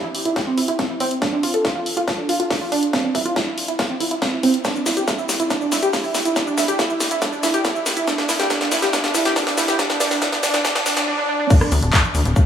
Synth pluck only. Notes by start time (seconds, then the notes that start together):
0.04 E4
0.26 E4
0.36 G4
0.47 C4
0.58 E4
0.68 E4
0.79 C4
0.90 E4
1.00 C4
1.22 D4
1.33 D4
1.43 F4
1.54 A4
1.65 F4
1.75 F4
1.97 F4
2.08 A4
2.18 D4
2.29 F4
2.40 F4
2.50 D4
2.61 F4
2.72 D4
2.93 C4
3.04 C4
3.15 E4
3.25 F4
3.36 E4
3.47 E4
3.68 E4
3.79 F4
3.90 C4
4.00 E4
4.11 E4
4.22 C4
4.33 E4
4.43 C4
4.65 D4
4.76 D4
4.86 E4
4.97 G4
5.08 E4
5.18 E4
5.40 E4
5.50 D4
5.61 D4
5.72 E4
5.83 G4
5.93 E4
6.04 E4
6.25 E4
6.36 D4
6.47 D4
6.58 E4
6.68 G4
6.79 E4
6.90 E4
7.11 E4
7.22 D4
7.32 D4
7.43 E4
7.54 G4
7.65 E4
7.75 E4
7.97 E4
8.08 D4
8.18 D4
8.29 E4
8.40 G4
8.50 D4
8.61 D4
8.72 E4
8.82 G4
8.93 D4
9.04 D4
9.15 E4
9.25 G4
9.36 D4
9.47 D4
9.58 E4
9.68 G4
9.79 D4
9.90 D4
10.00 D4
10.11 D4
10.22 D4
10.33 D4
10.43 D4
10.54 D4
10.65 D4
10.75 D4
10.86 D4
10.97 D4
11.08 D4
11.18 D4
11.29 D4
11.40 D4